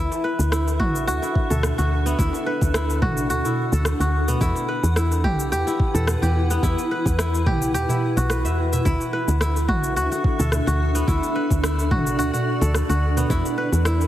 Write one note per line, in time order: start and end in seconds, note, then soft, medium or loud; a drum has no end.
0.00 4.37 D4 medium
0.00 0.51 E4 medium
0.00 0.27 G4 loud
0.00 0.60 A4 medium
0.00 4.37 A4 medium
0.00 2.16 E5 medium
0.11 darbuka ka soft
0.11 darbuka tek medium
0.11 cabasa soft
0.24 1.47 B4 medium
0.39 0.81 D2 medium
0.39 darbuka tek medium
0.39 cabasa medium
0.52 1.22 E4 medium
0.52 cross-stick medium
0.52 cabasa medium
0.67 darbuka ka soft
0.67 darbuka tek medium
0.67 cabasa soft
0.80 1.09 A1 medium
0.80 1.07 F#4 medium
0.80 kick medium
0.80 mid tom medium
0.95 darbuka ka medium
0.95 cabasa medium
1.07 1.19 D2 loud
1.07 1.78 F#4 loud
1.07 cabasa medium
1.22 2.18 E4 medium
1.22 darbuka ka medium
1.22 cabasa soft
1.35 kick medium
1.50 1.72 D2 medium
1.50 2.82 A4 medium
1.50 darbuka dum medium
1.50 cabasa medium
1.63 cross-stick loud
1.63 darbuka ka medium
1.63 cabasa soft
1.78 2.14 D2 medium
1.78 3.02 F#4 medium
1.78 darbuka tek medium
1.78 cabasa soft
2.06 3.92 B3 medium
2.06 cabasa medium
2.19 2.30 D2 medium
2.19 2.74 E4 medium
2.19 8.81 F#5 medium
2.19 kick loud
2.19 darbuka tek medium
2.19 cabasa medium
2.33 darbuka ka soft
2.33 darbuka tek medium
2.33 cabasa soft
2.46 3.69 B4 medium
2.61 3.03 D2 medium
2.61 kick loud
2.61 darbuka tek medium
2.61 cabasa medium
2.74 3.45 E4 medium
2.74 cross-stick loud
2.74 cabasa medium
2.90 darbuka ka soft
2.90 darbuka tek medium
2.90 cabasa soft
3.02 3.31 A1 medium
3.02 3.30 F#4 medium
3.02 kick loud
3.02 mid tom medium
3.02 darbuka dum medium
3.17 darbuka ka medium
3.17 cabasa medium
3.30 3.42 D2 loud
3.30 4.00 F#4 medium
3.30 cabasa medium
3.45 4.41 E4 medium
3.45 darbuka dum medium
3.45 cabasa soft
3.72 3.94 D2 medium
3.72 5.04 A4 medium
3.72 cabasa medium
3.85 cross-stick loud
3.85 cabasa soft
4.00 4.36 D2 medium
4.00 5.30 F#4 medium
4.00 cabasa soft
4.28 6.14 B3 medium
4.28 darbuka dum medium
4.28 cabasa medium
4.40 4.53 E2 loud
4.40 8.81 E4 medium
4.40 4.96 E4 loud
4.40 8.81 B4 medium
4.40 kick loud
4.40 darbuka tek medium
4.40 cabasa medium
4.56 darbuka ka soft
4.56 darbuka tek medium
4.56 cabasa soft
4.69 5.91 B4 medium
4.83 5.26 E2 medium
4.83 darbuka tek medium
4.83 cabasa medium
4.96 5.67 E4 medium
4.96 cross-stick medium
4.96 cabasa medium
5.12 darbuka ka soft
5.12 darbuka tek medium
5.12 cabasa soft
5.24 5.53 B1 medium
5.24 5.51 G4 medium
5.24 kick medium
5.24 mid tom medium
5.39 darbuka ka medium
5.39 cabasa medium
5.52 5.64 E2 loud
5.52 6.22 G4 loud
5.52 cabasa soft
5.67 6.63 E4 medium
5.67 darbuka ka medium
5.67 cabasa soft
5.80 kick loud
5.94 6.16 E2 loud
5.94 7.26 A4 medium
5.94 darbuka dum medium
5.94 cabasa medium
6.07 cross-stick loud
6.07 cabasa medium
6.22 6.59 E2 medium
6.22 7.46 G4 medium
6.22 darbuka tek medium
6.22 cabasa soft
6.50 8.37 B3 medium
6.50 cabasa medium
6.63 6.75 E2 loud
6.63 7.18 E4 loud
6.63 kick loud
6.63 darbuka tek medium
6.63 cabasa medium
6.78 darbuka ka soft
6.78 darbuka tek medium
6.78 cabasa soft
6.91 8.14 B4 medium
7.05 7.48 E2 medium
7.05 kick loud
7.05 darbuka tek medium
7.05 cabasa medium
7.19 7.89 E4 medium
7.19 cross-stick medium
7.19 cabasa medium
7.34 darbuka ka medium
7.34 darbuka tek medium
7.34 cabasa soft
7.46 7.76 B1 medium
7.46 7.74 G4 medium
7.46 kick loud
7.46 mid tom medium
7.46 darbuka dum medium
7.62 darbuka ka medium
7.62 cabasa medium
7.74 7.86 E2 loud
7.74 8.23 G4 medium
7.74 cabasa medium
7.89 8.85 E4 medium
7.89 darbuka dum medium
7.89 cabasa soft
8.17 8.46 B1 medium
8.17 9.63 F#4 medium
8.17 cabasa medium
8.30 9.13 B4 medium
8.30 cross-stick loud
8.30 cabasa medium
8.44 8.81 E2 medium
8.44 8.72 E5 medium
8.44 cabasa soft
8.73 9.76 E5 medium
8.73 darbuka dum medium
8.73 cabasa medium
8.85 8.97 D2 medium
8.85 13.26 D4 medium
8.85 9.40 E4 loud
8.85 13.26 A4 medium
8.85 11.05 E5 medium
8.85 kick loud
8.85 darbuka tek medium
8.85 cabasa medium
9.00 darbuka ka medium
9.00 darbuka tek medium
9.00 cabasa soft
9.13 10.36 B4 medium
9.28 9.70 D2 medium
9.28 darbuka tek medium
9.28 cabasa medium
9.41 10.98 E4 medium
9.41 cross-stick medium
9.41 cabasa medium
9.56 darbuka ka soft
9.56 darbuka tek medium
9.56 cabasa soft
9.68 9.98 A1 medium
9.68 9.96 F#4 medium
9.68 kick medium
9.68 mid tom medium
9.84 darbuka ka medium
9.84 cabasa medium
9.96 10.08 D2 loud
9.96 10.11 F#4 loud
9.96 cabasa soft
10.12 10.67 F#4 medium
10.12 darbuka ka medium
10.12 cabasa soft
10.24 kick loud
10.39 10.61 D2 loud
10.39 11.71 A4 medium
10.39 darbuka dum medium
10.39 cabasa medium
10.52 cross-stick medium
10.52 darbuka ka soft
10.52 cabasa medium
10.66 11.03 D2 medium
10.66 11.91 F#4 medium
10.66 darbuka tek medium
10.66 cabasa soft
10.95 12.81 B3 medium
10.95 cabasa medium
11.07 11.19 D2 loud
11.07 11.63 E4 loud
11.07 13.28 D5 medium
11.07 kick loud
11.07 darbuka tek medium
11.07 cabasa medium
11.23 darbuka ka medium
11.23 darbuka tek medium
11.23 cabasa soft
11.35 12.58 B4 medium
11.50 11.93 D2 medium
11.50 kick medium
11.50 darbuka tek medium
11.50 cabasa medium
11.63 13.20 E4 medium
11.63 cross-stick medium
11.63 cabasa soft
11.79 darbuka ka soft
11.79 darbuka tek medium
11.79 cabasa soft
11.91 12.20 A1 medium
11.91 12.18 F#4 medium
11.91 kick loud
11.91 mid tom medium
11.91 darbuka dum medium
12.05 darbuka ka medium
12.05 cabasa medium
12.19 12.30 D2 loud
12.19 12.33 F#4 loud
12.19 cabasa soft
12.34 12.89 F#4 medium
12.34 darbuka dum medium
12.34 cabasa soft
12.61 12.83 D2 medium
12.61 13.93 A4 medium
12.61 cabasa medium
12.74 cross-stick medium
12.74 cabasa medium
12.89 13.25 D2 medium
12.89 14.07 F#4 medium
12.89 cabasa soft
13.17 14.07 B3 medium
13.17 darbuka dum medium
13.17 cabasa medium
13.30 13.42 E2 medium
13.30 14.07 E4 medium
13.30 13.85 E4 loud
13.30 14.07 B4 medium
13.30 14.07 F#5 medium
13.30 kick loud
13.30 darbuka tek medium
13.30 cabasa medium
13.45 darbuka ka soft
13.45 darbuka tek medium
13.45 cabasa soft
13.58 14.07 B4 medium
13.72 14.07 E2 medium
13.72 darbuka tek medium
13.72 cabasa medium
13.85 14.07 E4 medium
13.85 cross-stick medium
13.85 cabasa soft
14.01 darbuka ka medium
14.01 darbuka tek medium
14.01 cabasa soft